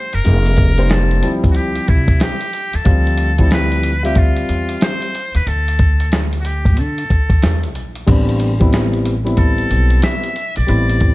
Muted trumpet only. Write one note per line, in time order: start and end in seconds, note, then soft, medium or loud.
0.00 0.16 C5 loud
0.14 0.93 A#4 loud
0.92 1.31 A4 medium
1.51 1.58 F#4 medium
1.56 1.90 G4 medium
1.89 2.24 E4 medium
2.22 2.77 G4 medium
2.75 3.52 A4 loud
3.54 4.02 B4 loud
4.06 4.19 G4 medium
4.18 4.82 F4 medium
4.83 5.32 C5 loud
5.36 5.49 B4 medium
5.48 6.20 A4 loud
6.41 6.47 F#4 medium
6.46 6.78 G4 medium
6.79 7.72 A4 medium
9.38 9.99 A4 loud
10.04 10.53 E5 loud
10.57 11.15 D5 loud